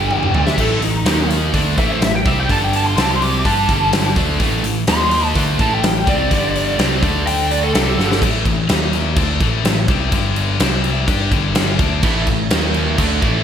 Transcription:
Already playing: picked electric bass G1, distorted electric guitar G2 D3 G3, lead electric guitar G5
0.11 high tom
0.23 mid tom
0.33 picked electric bass D2, distorted electric guitar D3 A3 D4, mid tom
0.47 lead electric guitar E5, snare
0.58 picked electric bass A1, distorted electric guitar A2 E3 A3, lead electric guitar A4, kick, crash
0.80 picked electric bass A1, distorted electric guitar A2 E3, lead electric guitar D#4, open hi-hat
1.05 picked electric bass D#2, distorted electric guitar D#3 A#3 D#4, snare, open hi-hat
1.30 snare, open hi-hat
1.54 picked electric bass D2, distorted electric guitar D3 A3 D4, kick, open hi-hat
1.77 picked electric bass A1, distorted electric guitar A2 E3 A3, lead electric guitar E5, kick, open hi-hat
1.91 lead electric guitar C5
2.01 picked electric bass A1, distorted electric guitar A2 E3, lead electric guitar E5, snare, open hi-hat
2.15 lead electric guitar G5
2.25 picked electric bass C2, distorted electric guitar C3 G3 C4, lead electric guitar E5, kick, open hi-hat
2.40 lead electric guitar G5
2.49 picked electric bass G1, distorted electric guitar G2 D3 G3, lead electric guitar A5, kick, open hi-hat
2.64 lead electric guitar G5
2.73 lead electric guitar A5, open hi-hat
2.86 lead electric guitar C6
2.97 picked electric bass C2, distorted electric guitar C3 G3 C4, lead electric guitar A5, snare, open hi-hat
3.11 lead electric guitar C6
3.22 lead electric guitar D6, open hi-hat
3.45 picked electric bass G2, distorted electric guitar G3 D4 G4, lead electric guitar A5, kick, open hi-hat
3.69 picked electric bass G1, distorted electric guitar G2 D3 G3, kick, open hi-hat
3.93 snare, open hi-hat
4.16 picked electric bass D2, distorted electric guitar D3 A3 D4, kick, open hi-hat
4.39 picked electric bass A1, distorted electric guitar A2 E3 A3, kick, open hi-hat
4.64 picked electric bass A1, distorted electric guitar A2 E3, open hi-hat
4.87 picked electric bass D#2, distorted electric guitar D#3 A#3 D#4, lead electric guitar C6, snare, open hi-hat
5.11 open hi-hat
5.35 picked electric bass D2, distorted electric guitar D3 A3 D4, kick, open hi-hat
5.59 picked electric bass A1, distorted electric guitar A2 E3 A3, lead electric guitar A5, kick, open hi-hat
5.74 lead electric guitar G5
5.82 picked electric bass A1, distorted electric guitar A2 E3, snare, open hi-hat
6.06 picked electric bass C2, distorted electric guitar C3 G3 C4, lead electric guitar D5, kick, open hi-hat
6.30 picked electric bass G1, distorted electric guitar G2 D3 G3, kick, open hi-hat
6.55 open hi-hat
6.78 picked electric bass C2, distorted electric guitar C3 G3 C4, snare, open hi-hat
7.03 picked electric bass D2, distorted electric guitar D3 A3 D4, kick, snare, open hi-hat
7.27 lead electric guitar G5, open hi-hat
7.51 lead electric guitar D5, open hi-hat
7.63 lead electric guitar A4
7.74 picked electric bass C2, distorted electric guitar C3 G3 C4, lead electric guitar A4, snare, open hi-hat
7.98 picked electric bass G1, distorted electric guitar G2 D3 G3, snare
8.12 snare
8.22 picked electric bass A1, distorted electric guitar A2 E3 A3, kick, crash
8.45 picked electric bass A1, distorted electric guitar A2 E3, kick, crash
8.69 picked electric bass D#2, distorted electric guitar D#3 A#3 D#4, snare, crash
8.93 snare, crash
9.16 picked electric bass D2, distorted electric guitar D3 A3 D4, kick, crash
9.40 picked electric bass A1, distorted electric guitar A2 E3 A3, kick, crash
9.65 picked electric bass A1, distorted electric guitar A2 E3, snare, crash
9.88 picked electric bass C2, distorted electric guitar C3 G3 C4, kick, crash
10.12 picked electric bass G1, distorted electric guitar G2 D3 G3, kick, crash
10.36 crash
10.60 picked electric bass C2, distorted electric guitar C3 G3 C4, snare, crash
10.84 crash
11.08 picked electric bass G2, distorted electric guitar G3 D4 G4, kick, crash
11.31 picked electric bass G1, distorted electric guitar G2 D3 G3, kick, crash
11.55 snare, crash
11.79 picked electric bass D2, distorted electric guitar D3 A3 D4, kick, crash
12.03 picked electric bass A1, distorted electric guitar A2 E3 A3, kick, crash
12.27 picked electric bass A1, distorted electric guitar A2 E3, kick, crash
12.50 picked electric bass D#2, distorted electric guitar D#3 A#3 D#4, snare, crash
12.74 crash
12.98 picked electric bass D2, distorted electric guitar D3 A3 D4, kick, crash
13.22 picked electric bass A1, distorted electric guitar A2 E3 A3, kick, crash

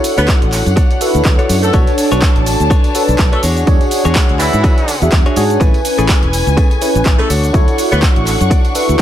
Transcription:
Already playing: string section D4 C#5 F#5, tine electric piano E4 F#4 A4 C#5
0.04 open hi-hat, tambourine, shaker
0.17 fingered electric bass D2, horn section B3 B4, clean electric guitar D4 F#4 A4 C#5, closed hi-hat, tambourine, shaker
0.28 kick, clap, closed hi-hat, tambourine, shaker
0.42 fingered electric bass A1, closed hi-hat
0.53 clap, open hi-hat, tambourine, shaker
0.66 fingered electric bass F#2, closed hi-hat, tambourine, shaker
0.76 clean electric guitar D4 F#4 A4 C#5, kick, closed hi-hat, tambourine, shaker
0.91 closed hi-hat, tambourine
1.00 tine electric piano E4 F#4 A4 B4, open hi-hat, tambourine, shaker
1.14 fingered electric bass D2, closed hi-hat, tambourine, shaker
1.25 kick, clap, closed hi-hat, tambourine, shaker
1.39 clean electric guitar D4 F#4 A4 C#5, closed hi-hat
1.49 fingered electric bass F#2, open hi-hat, tambourine, shaker
1.63 horn section A3 A4, closed hi-hat, tambourine, shaker
1.73 fingered electric bass B1, tine electric piano D4 F#4 A4 C#5, clean electric guitar D4 A4 B4 C#5, string section A5, kick, closed hi-hat, tambourine, shaker
1.87 closed hi-hat, tambourine
1.98 open hi-hat, tambourine, shaker
2.11 fingered electric bass B1, clean electric guitar D4 A4 B4 C#5, closed hi-hat, tambourine, shaker
2.22 kick, clap, closed hi-hat, tambourine, shaker
2.36 fingered electric bass A1, closed hi-hat
2.46 open hi-hat, tambourine, shaker
2.60 fingered electric bass D2, closed hi-hat, tambourine, shaker
2.70 clean electric guitar D4 A4 B4 C#5, kick, closed hi-hat, tambourine, shaker
2.84 closed hi-hat, tambourine
2.95 tine electric piano D4 F#4 A4 B4, open hi-hat, tambourine, shaker
3.08 fingered electric bass B1, closed hi-hat, tambourine, shaker
3.19 fingered electric bass B1, kick, clap, closed hi-hat, tambourine, shaker
3.32 horn section A3 A4, clean electric guitar D4 A4 B4 C#5, closed hi-hat
3.43 fingered electric bass E2, clean electric guitar D4 F#4 G#4 C#5, string section G#4 F#5, open hi-hat, tambourine, shaker
3.57 closed hi-hat, tambourine, shaker
3.66 fingered electric bass E2, tine electric piano D4 F#4 G#4 C#5, kick, closed hi-hat, tambourine, shaker
3.81 closed hi-hat, tambourine
3.91 open hi-hat, tambourine, shaker
4.05 fingered electric bass E2, clean electric guitar D4 F#4 G#4 C#5, closed hi-hat, shaker
4.15 kick, clap, closed hi-hat, shaker
4.29 fingered electric bass D2, closed hi-hat
4.39 horn section E3 E4, clap, open hi-hat, tambourine, shaker
4.53 fingered electric bass G#2, closed hi-hat, tambourine, shaker
4.64 clean electric guitar D4 F#4 G#4 C#5, kick, closed hi-hat, tambourine, shaker
4.78 closed hi-hat, tambourine
4.88 open hi-hat, tambourine, shaker
5.02 fingered electric bass E2, tine electric piano D4 F#4 G#4 E5, closed hi-hat, tambourine, shaker
5.12 fingered electric bass E2, kick, clap, closed hi-hat, tambourine, shaker
5.26 clean electric guitar D4 F#4 G#4 C#5, closed hi-hat
5.36 fingered electric bass G#2, tine electric piano D4 F#4 G#4 C#5, open hi-hat, tambourine, shaker
5.50 closed hi-hat, tambourine, shaker
5.60 fingered electric bass A1, clean electric guitar C#4 G#4 A4 B4, tine electric piano C#4 E4 B4 G#5, string section C#4 B4 G#5, kick, closed hi-hat, tambourine, shaker
5.74 closed hi-hat, tambourine
5.85 open hi-hat, tambourine, shaker
5.98 fingered electric bass A1, clean electric guitar C#4 G#4 A4 B4, closed hi-hat, tambourine, shaker
6.09 kick, clap, closed hi-hat, tambourine, shaker
6.23 fingered electric bass E1, closed hi-hat
6.33 open hi-hat, tambourine, shaker
6.47 fingered electric bass C#2, closed hi-hat, tambourine, shaker
6.57 clean electric guitar C#4 G#4 A4 B4, kick, closed hi-hat, tambourine, shaker
6.71 closed hi-hat, tambourine
6.81 tine electric piano C#4 E4 B4 G#5, open hi-hat, tambourine, shaker
6.95 fingered electric bass A1, closed hi-hat, tambourine, shaker
7.06 kick, clap, closed hi-hat, tambourine, shaker
7.19 horn section A3 A4, clean electric guitar C#4 G#4 A4 B4, closed hi-hat
7.30 fingered electric bass D2, string section D4 F#5 C#6, clean electric guitar D4 F#4 A4 C#5, open hi-hat, tambourine, shaker
7.44 closed hi-hat, tambourine, shaker
7.53 fingered electric bass D2, tine electric piano E4 F#4 A4 C#5, kick, closed hi-hat, tambourine, shaker
7.68 closed hi-hat, tambourine
7.78 open hi-hat, tambourine, shaker
7.92 fingered electric bass D2, horn section B3 B4, clean electric guitar D4 F#4 A4 C#5, closed hi-hat, tambourine, shaker
8.02 kick, clap, closed hi-hat, tambourine, shaker
8.16 fingered electric bass A1, closed hi-hat
8.26 clap, open hi-hat, tambourine, shaker
8.41 fingered electric bass F#2, closed hi-hat, tambourine, shaker
8.50 clean electric guitar D4 F#4 A4 D5, kick, closed hi-hat, tambourine, shaker
8.65 closed hi-hat, tambourine
8.74 tine electric piano E4 F#4 A4 B4, open hi-hat, tambourine, shaker
8.88 fingered electric bass D2, closed hi-hat, tambourine, shaker

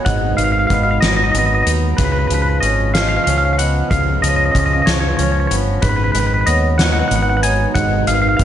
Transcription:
Already playing: clean electric guitar F#3 B3 D#4, ambient pad G#3 D#4 F#4 B4
0.05 fingered electric bass G#1, clean electric guitar G#2 F#5, vibraphone D#5, kick, closed hi-hat
0.37 fingered electric bass G#1, clean electric guitar D#3 F5, vibraphone B4, closed hi-hat
0.44 clean electric guitar F5
0.52 clean electric guitar F5
0.59 clean electric guitar F5
0.67 fingered electric bass G#1, clean electric guitar B3 F5, vibraphone D#5, kick, closed hi-hat
0.74 clean electric guitar F5
0.83 clean electric guitar F5
0.91 clean electric guitar F5
1.01 fingered electric bass G#1, clean electric guitar F#3 D#5, snare, closed hi-hat
1.08 clean electric guitar D#5
1.16 clean electric guitar D#5
1.24 clean electric guitar D#5
1.32 fingered electric bass G#1, clean electric guitar B3 D#5, vibraphone B4, closed hi-hat
1.39 clean electric guitar D#5
1.46 clean electric guitar D#5
1.55 clean electric guitar D#5
1.63 fingered electric bass D#2, clean electric guitar D#4 D#5
1.67 closed hi-hat
1.97 fingered electric bass C#2, ambient pad C#3 F3 C#4 B4, clean electric guitar C#3 B4, vibraphone B4, kick, closed hi-hat
2.04 clean electric guitar B4
2.12 clean electric guitar B4
2.19 clean electric guitar B4
2.27 fingered electric bass C#2, clean electric guitar F3 B4, closed hi-hat
2.34 clean electric guitar B4
2.42 clean electric guitar B4
2.50 clean electric guitar B4
2.60 fingered electric bass G#1, clean electric guitar C#4 D#5, vibraphone C#5, closed hi-hat
2.94 clean electric guitar F3 F5, vibraphone D#5, snare, closed hi-hat
3.02 clean electric guitar F5
3.08 clean electric guitar F5
3.17 clean electric guitar F5
3.24 fingered electric bass C#2, clean electric guitar C#4 F5, vibraphone C#5, closed hi-hat
3.30 clean electric guitar F5
3.38 clean electric guitar F5
3.45 clean electric guitar F5
3.53 clean electric guitar F5
3.58 clean electric guitar B3 F#5, vibraphone D#5, closed hi-hat
3.90 fingered electric bass C#2, clean electric guitar C#3 F5, kick, closed hi-hat
4.22 fingered electric bass C#2, clean electric guitar F3 D#5, vibraphone C#5, closed hi-hat
4.29 clean electric guitar D#5
4.36 clean electric guitar D#5
4.46 clean electric guitar D#5
4.51 fingered electric bass C#2, clean electric guitar C#4 D#5, kick, closed hi-hat
4.59 clean electric guitar D#5
4.66 clean electric guitar D#5
4.73 clean electric guitar D#5
4.82 clean electric guitar D#5
4.86 fingered electric bass C#2, clean electric guitar F3 C#5, snare, closed hi-hat
4.94 clean electric guitar C#5
5.00 clean electric guitar C#5
5.08 clean electric guitar C#5
5.17 fingered electric bass C#2, clean electric guitar C#4 C#5, vibraphone C#5, closed hi-hat
5.23 clean electric guitar C#5
5.32 clean electric guitar C#5
5.40 clean electric guitar C#5
5.47 fingered electric bass G1, clean electric guitar B3 C#5, closed hi-hat
5.82 fingered electric bass G#1, clean electric guitar G#2 B4, ambient pad G#3 D#4 F#4, vibraphone B4, kick, closed hi-hat
5.89 clean electric guitar B4
5.96 clean electric guitar B4
6.04 clean electric guitar B4
6.12 fingered electric bass G#1, clean electric guitar D#3 B4, closed hi-hat
6.20 clean electric guitar B4
6.27 clean electric guitar B4
6.34 clean electric guitar B4
6.41 clean electric guitar B4
6.46 fingered electric bass D#2, clean electric guitar B3 D#5, vibraphone C#5, closed hi-hat
6.78 clean electric guitar F#3 F#5, snare, closed hi-hat
6.84 clean electric guitar F#5
6.92 clean electric guitar F#5
6.99 clean electric guitar F#5
7.08 fingered electric bass G#1, clean electric guitar B3 F#5, vibraphone B4, closed hi-hat
7.16 clean electric guitar F#5
7.23 clean electric guitar F#5
7.29 clean electric guitar F#5
7.37 clean electric guitar F#5
7.43 clean electric guitar D#4 G#5, vibraphone C#5, closed hi-hat
7.75 fingered electric bass G#1, clean electric guitar G#2 F#5, vibraphone D#5, kick, closed hi-hat
8.07 fingered electric bass G#1, clean electric guitar D#3 F5, vibraphone B4, closed hi-hat
8.14 clean electric guitar F5
8.22 clean electric guitar F5
8.29 clean electric guitar F5
8.37 fingered electric bass G#1, clean electric guitar B3 F5, vibraphone D#5, kick, closed hi-hat

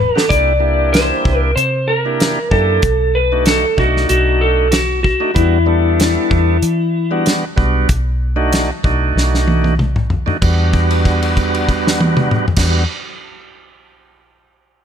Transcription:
Already playing: electric slide guitar B4
0.15 tonewheel organ B3 D4 F#4 G4, electric slide guitar A4, snare
0.29 fingered electric bass C2, tonewheel organ A#3 D4 E4 G4, electric slide guitar D5, kick, closed hi-hat
0.59 tonewheel organ A#3 D4 E4 G4
0.93 electric slide guitar C5, snare, closed hi-hat
1.25 fingered electric bass C2, kick
1.38 electric slide guitar A#4
1.56 fingered electric bass C3, electric slide guitar C5, closed hi-hat
1.88 electric slide guitar A#4
2.05 tonewheel organ A#3 D4 E4 G4
2.20 snare, closed hi-hat
2.51 fingered electric bass F#2, tonewheel organ A#3 D4 E4 G4, electric slide guitar A4, kick
2.82 fingered electric bass B1, kick, closed hi-hat
3.15 electric slide guitar B4
3.32 tonewheel organ A3 D4 D#4 F#4
3.46 electric slide guitar A4, snare, closed hi-hat
3.77 fingered electric bass B1, tonewheel organ A3 D4 D#4 F#4, electric slide guitar F#4, kick
3.97 snare
4.09 fingered electric bass B1, electric slide guitar F#4, closed hi-hat
4.41 electric slide guitar A4
4.71 electric slide guitar F#4, snare, closed hi-hat
5.03 electric slide guitar F#4, kick
5.20 tonewheel organ A3 D4 D#4 F#4
5.34 fingered electric bass E2, tonewheel organ G3 B3 D4 F#4, electric slide guitar E4, kick, closed hi-hat
5.66 tonewheel organ G3 B3 D4 A4
6.00 snare, closed hi-hat
6.31 fingered electric bass E2, kick
6.62 fingered electric bass E3, closed hi-hat
7.11 tonewheel organ G3 B3 D4 F#4
7.26 snare, closed hi-hat
7.56 fingered electric bass B1, tonewheel organ G3 B3 D4 F#4, kick
7.89 fingered electric bass B1, kick, closed hi-hat
8.36 tonewheel organ A3 D4 D#4 F#4
8.53 snare, closed hi-hat
8.84 fingered electric bass B1, tonewheel organ A3 D4 D#4 F#4, kick
9.16 fingered electric bass B1, snare
9.34 snare
9.48 high tom
9.64 high tom
9.79 mid tom
9.96 mid tom
10.10 floor tom
10.26 tonewheel organ A3 D4 D#4 F#4, floor tom
10.42 fingered electric bass E2, tonewheel organ G3 B3 D4 F#4, kick, crash
10.73 kick, crash
10.91 crash
11.05 kick, crash
11.22 crash
11.37 kick, crash
11.55 crash
11.69 kick, crash
11.87 snare
12.01 high tom
12.17 mid tom
12.31 mid tom
12.48 floor tom
12.56 fingered electric bass E2, tonewheel organ G3 B3 D4 F#4, kick, snare, crash

